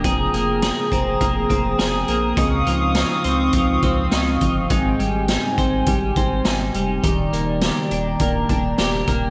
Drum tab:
HH |xxxxxxxx|xxxxxxxx|xxxxxxxx|xxxxxxxx|
SD |--o---o-|--o---o-|--o---o-|--o---o-|
BD |o--ooo--|o---oo-o|o--ooo--|o---oo-o|